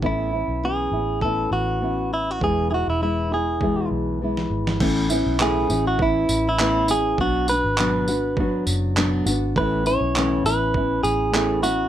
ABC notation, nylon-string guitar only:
X:1
M:4/4
L:1/8
Q:"Swing 16ths" 1/4=101
K:A
V:1 name="Nylon-string guitar"
[A,,E,B,CE] [B,CE] [E,B,CE] [B,CE] [A,,E,B,CE]2 [E,B,CE]2 | [E,,B,,E,G,B,E] [E,G,B,E] [E,G,B,E] [E,G,B,E] [E,,B,,E,G,B,E]2 [E,G,B,E]2 | [A,,E,B,CE] [B,CE] [A,,E,B,CE] [B,CE] [E,B,CE]2 [A,,E,B,CE] [B,CE] | [B,,F,B,DF] [B,DF] [B,,F,B,DF] [B,DF] [F,B,DF]2 [B,,F,B,DF] [B,DF] |
[A,,E,B,CE] [B,CE] [A,,E,B,CE] [B,CE] [E,B,CE]2 [A,,E,B,CE] [B,CE] |]